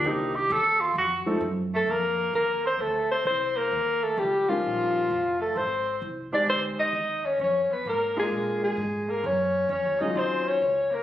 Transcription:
X:1
M:4/4
L:1/8
Q:"Swing" 1/4=130
K:Eblyd
V:1 name="Alto saxophone"
z6 z A | B2 B c A c c B- | B A G F4 A | c2 z d c e2 _d |
_d _c B _A2 A2 B | _d2 d e c d2 B |]
V:2 name="Grand piano"
[E,B,CDG] z4 [F,A,CEA] z2 | z8 | z3 [G,_DEFB]3 z2 | z3 [_A,CEGc]3 z2 |
z3 [_A,B,DFB]3 z2 | z3 [_G,_DEF_A]3 z2 |]
V:3 name="Tenor saxophone"
E G A F _G z2 A, | B,2 B, C A, C C B,- | B, A, G, F,4 A, | C2 z D C E2 _D |
_D _C B, _A,2 A,2 B, | _D2 D E C D2 B, |]
V:4 name="Upright bass" clef=bass
C,,2 E,,2 F,, z _G,,2 | F,,2 E,,2 D,,2 C,,2 | E,,2 _D,,2 B,,,2 F,,,2 | _A,,,2 C,, z D,, z E,,2 |
F,, z _A,,2 B,,2 A,,2 | _G,,2 (3F,, E,, _D,, E,,2 D,,2 |]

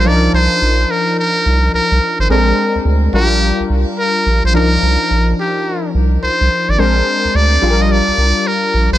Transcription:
X:1
M:4/4
L:1/16
Q:"Swing 16ths" 1/4=107
K:Cm
V:1 name="Muted trumpet"
d2 c4 B2 B4 B3 c | B4 z2 G4 z2 B3 c | B6 G4 z2 c3 d | c4 d3 e d4 B3 c |]
V:2 name="Synth keys"
[F,DEB]16 | [A,CD=AB]6 [G,DFB]8- [G,DFB]2 | [F,DEB]16 | [A,CDB]6 [G,DFAB]8- [G,DFAB]2 |]
V:3 name="Analog synth bass" clef=bass
C,,2 C,, z B,,,2 z4 C,,2 C,, C,, z A,,, | B,,,2 z D,, D,,2 B,,,3 C,, C,, z3 B,,, B,,, | C,,2 C,, z B,,,2 z4 C,,2 C,, C,, z A,,, | B,,,2 z D,, D,,2 B,,,3 C,, C,, z3 B,,, B,,, |]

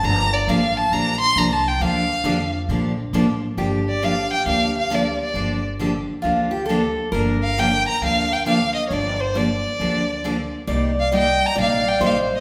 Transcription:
X:1
M:4/4
L:1/16
Q:"Swing" 1/4=135
K:Gm
V:1 name="Violin"
b2 d2 f2 a2 b2 c'2 (3b2 a2 g2 | f6 z8 z2 | z2 d2 f2 g2 f2 f2 d2 d2- | d2 z12 z2 |
z2 f2 g2 b2 f2 g2 f2 e3/2 ^c/2 | d2 c2 d8- d2 z2 | z2 f2 g2 b2 f2 g2 f2 e2 |]
V:2 name="Steel-string acoustic guitar"
z16 | z16 | G16- | G8 F2 G2 A4 |
B16- | B12- B2 z2 | d4 e4 d4 c4 |]
V:3 name="Steel-string acoustic guitar"
[D,F,B,DG]2 z2 [D,F,B,DG]2 z2 [D,F,B,DG]2 z2 [D,F,B,DG]2 z2 | [D,F,B,DG]2 z2 [D,F,B,DG]2 z2 [D,F,B,DG]2 z2 [D,F,B,DG]2 z2 | [D,F,B,DG]2 z2 [D,F,B,DG]2 z2 [D,F,B,DG]2 z2 [D,F,B,DG]2 z2 | [D,F,B,DG]2 z2 [D,F,B,DG]2 z2 [D,F,B,DG]2 z2 [D,F,B,DG]2 z2 |
[D,F,B,DG]2 z2 [D,F,B,DG]2 z2 [D,F,B,DG]2 z2 [D,F,B,DG]2 z2 | [D,F,B,DG]2 z2 [D,F,B,DG]2 z2 [D,F,B,DG]2 z2 [D,F,B,DG]2 z2 | [C,G,B,EG]2 z2 [C,G,B,EG]2 z2 [C,G,B,EG]2 z2 [C,G,B,EG]2 z2 |]
V:4 name="Upright bass" clef=bass
G,,,4 A,,,4 B,,,4 C,,4 | D,,4 F,,4 B,,4 A,,4 | G,,,8 D,,8 | G,,,8 D,,8 |
G,,,8 D,,8 | G,,,8 D,,8 | C,,8 B,,,4 A,,,4 |]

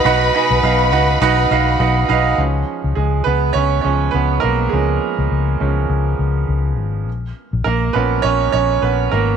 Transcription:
X:1
M:4/4
L:1/16
Q:"Swing 16ths" 1/4=102
K:Dbmix
V:1 name="Violin section"
[=B=b]16 | z16 | z16 | z16 |]
V:2 name="Upright piano"
[^D^F=B^d^f]2 [DFBda]2 [DFBd=f]2 [D^FBd^f]2 [DFBdf]2 [DFBd=f]2 [D^FBd^f]2 [DFBd=f]2 | z4 [A,A]2 [Cc]2 [Dd]2 d2 [Cc]2 [B,B]2 | A8 z8 | z4 [B,B]2 [Cc]2 [Dd]2 [Dd]2 [Cc]2 [B,B]2 |]
V:3 name="Upright piano" clef=bass
=B,,6 z8 z2 | [F,A,D]8- [F,A,D]2 [F,A,D]2 z4 | [F,A,D]6 [F,A,D]2 z8 | z6 [F,B,D]2 z8 |]
V:4 name="Fingered electric bass" clef=bass
=B,,,2 z B,,, B,,,2 D,,2 B,,,2 B,,,2 B,,,2 B,,,2 | D,,2 z D,, D,,2 D,,2 D,,2 D,,2 D,,2 C,,2 | D,,2 z D,, D,,2 D,,2 D,,2 D,,2 D,,2 A,,,2 | B,,,2 z B,,, B,,,2 B,,,2 B,,,2 B,,,2 B,,,2 A,,,2 |]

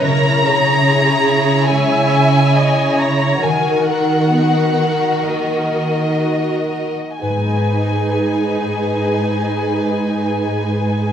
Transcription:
X:1
M:4/4
L:1/16
Q:1/4=64
K:G#m
V:1 name="Violin section"
a8 g6 a2 | g2 f6 d8 | g16 |]
V:2 name="Viola section"
A2 G6 e4 d2 c2 | A4 B,2 A6 F2 z2 | [DG]16 |]
V:3 name="Violin section"
[Ec]16 | [FA]12- [FA]3 z | B16 |]
V:4 name="Harp"
C,2 C2 G2 e2 G,2 C2 G2 e2 | D,2 D2 A2 f2 A,4 A2 f2 | [G,,G,B,DGd]16 |]
V:5 name="Cello section" clef=bass
C,16 | D,12- D,3 z | G,,16 |]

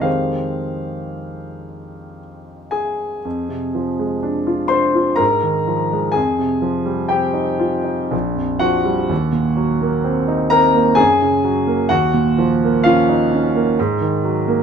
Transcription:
X:1
M:3/4
L:1/16
Q:1/4=63
K:Fm
V:1 name="Grand piano"
f8 z2 [Aa]2- | [Aa]6 [cc']2 [Bb]4 | [Aa]4 [Gg]4 z2 [_G_g]2- | [_G_g]6 [Bb]2 [Aa]4 |
[_G_g]4 [Ff]4 z4 |]
V:2 name="Grand piano" clef=bass
[F,,E,A,Gc]12 | F,, C, F, A, =D F D F A,, E, F, A, | F,, C, F, G, C E F E B,,, F,, F, G, | E,, B,, _G, B, C E C B, _G,, D, G, B, |
E,, B,, F, B, D E D B, A,, E, _G, B, |]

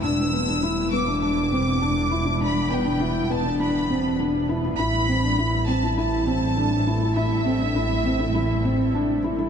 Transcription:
X:1
M:4/4
L:1/16
Q:1/4=101
K:Em
V:1 name="Violin section"
e'6 d'2 d'8 | b2 g4 a2 b4 z4 | b6 a2 a8 | e12 z4 |]
V:2 name="Felt piano"
D2 B, D E2 B, D D2 C2 D2 E E | D2 B, D E2 B, D D2 C2 D2 E E | E2 C D E2 C E E2 C2 D2 E E | E2 C D E2 C E E2 C2 D2 E E |]
V:3 name="Ambient pad"
[G,B,DEB]16- | [G,B,DEB]16 | [G,A,CEA]16- | [G,A,CEA]16 |]
V:4 name="Double bass section" clef=bass
E,,,16- | E,,,16 | A,,,16- | A,,,16 |]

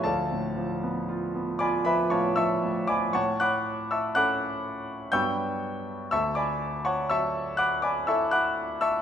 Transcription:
X:1
M:3/4
L:1/16
Q:1/4=60
K:Dlyd
V:1 name="Grand piano"
[Ad=fa]6 [dgbd'] [Begb] [cfac'] [eac'e']2 [dgbd'] | [cfac'] [fbd'f']2 [eac'e'] [fbd'f']4 [=gc'e'=g']4 | [eac'e'] [dgbd']2 [cfac'] [eac'e']2 [fbd'f'] [dgbd'] [eac'e'] [fbd'f']2 [eac'e'] |]
V:2 name="Grand piano" clef=bass
[D,,=F,] A,, F, B, =F B, F F, A,, F, A,, F, | A,,4 [CA]4 [=G,,F,B,DB]4 | D,,4 F,4 [EA]4 |]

